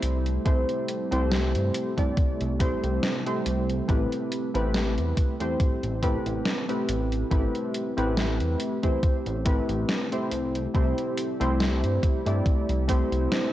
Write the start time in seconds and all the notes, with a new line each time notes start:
Already playing: C3 G3 A3 C4 E4 G4 C5
0.03 C2, closed hi-hat
0.26 closed hi-hat
0.45 C2 A3 C4 E4 G4 C5, kick, closed hi-hat
0.69 closed hi-hat
0.88 closed hi-hat
1.11 C2 A3 C4 E4 G4 C5, closed hi-hat
1.32 snare, closed hi-hat
1.55 G2, closed hi-hat
1.74 closed hi-hat
1.97 G2 A3 C4 E4 G4 D5, kick, closed hi-hat
2.17 kick, closed hi-hat
2.41 C2, closed hi-hat
2.59 A3 C4 E4 G4 C5, kick, closed hi-hat
2.84 C2, closed hi-hat
3.03 snare, closed hi-hat
3.26 A3 C4 E4 G4 C5, closed hi-hat
3.46 C2, closed hi-hat
3.69 closed hi-hat
3.88 A1 A3 C4 E4 G4 B4, kick, closed hi-hat
4.12 closed hi-hat
4.32 closed hi-hat
4.54 A1 A3 C4 E4 G4 B4, closed hi-hat
4.74 snare, closed hi-hat
4.98 E2, closed hi-hat
5.17 kick, closed hi-hat
5.40 E2 A3 C4 E4 G4 C5, closed hi-hat
5.60 A1, kick, closed hi-hat
5.83 A1, closed hi-hat
6.02 A3 C4 E4 G4 B4, kick, closed hi-hat
6.26 A1, closed hi-hat
6.46 snare, closed hi-hat
6.68 A3 C4 E4 G4 B4, closed hi-hat
6.89 A1, closed hi-hat
7.12 closed hi-hat
7.31 A1 A3 C4 E4 G4 B4, kick, closed hi-hat
7.55 closed hi-hat
7.74 closed hi-hat
7.97 A1 A3 C4 E4 G4 B4, closed hi-hat
8.17 snare, closed hi-hat
8.40 E2, closed hi-hat
8.60 closed hi-hat
8.83 E2 A3 C4 E4 G4 C5, kick, closed hi-hat
9.03 kick, closed hi-hat
9.26 A1, closed hi-hat
9.45 A3 C4 E4 G4 B4, kick, closed hi-hat
9.69 A1, closed hi-hat
9.89 snare, closed hi-hat
10.11 A3 C4 E4 G4 C5, closed hi-hat
10.31 C2 C3 G3 A3 E4, closed hi-hat
10.55 closed hi-hat
10.74 C2 A3 C4 E4 G4 C5, kick, closed hi-hat
10.98 closed hi-hat
11.17 closed hi-hat
11.40 C2 A3 C4 E4 G4 C5, closed hi-hat
11.60 snare, closed hi-hat
11.84 G2, closed hi-hat
12.03 kick, closed hi-hat
12.26 G2 A3 C4 E4 G4 D5, closed hi-hat
12.46 C2, kick, closed hi-hat
12.69 C2, closed hi-hat
12.88 A3 C4 E4 G4 C5, kick, closed hi-hat
13.12 C2, closed hi-hat
13.32 snare, closed hi-hat